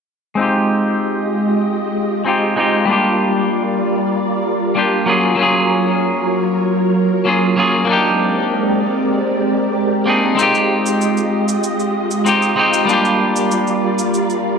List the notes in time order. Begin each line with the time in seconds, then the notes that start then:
0.35 G#3 C4 D#4 F4 G4 D#5
0.39 G#3 F4 G4
2.25 G#3 C4 D#4 F4 G4
2.56 G#3 C4 D#4 F4 G4
2.85 G3 A#3 D4 A#4 D5
2.91 F4 G4
4.75 G3 A#3 D4 F4 G4
5.06 F#3 A#3 C#4 F4 G#4 C#5
5.35 F#3 A#3 C#4
5.41 F4 G#4
7.25 F#3 A#3 C#4 F4 G#4
7.56 F#3 A#3 C#4 F4 G#4
7.85 A#3 C4 D4 G4 D5
7.89 G#3 C4 D#4 G4
10.06 A#3 C4 D4 D#4 G#4
10.35 G#3 C4 D#4 F4 D#5, shaker
10.41 F4 G4
10.55 shaker
10.86 shaker
11.01 shaker
11.17 shaker
11.48 shaker
11.64 shaker
11.80 shaker
12.11 shaker
12.25 G#3 C4 D#4 F4 G4, shaker
12.42 shaker
12.56 G#3 C4 D#4 F4 G4
12.74 shaker
12.85 G3 A#3 D4 A#4 D5, shaker
12.91 F4 G4
13.05 shaker
13.36 shaker
13.51 shaker
13.67 shaker
13.99 shaker
14.14 shaker
14.30 shaker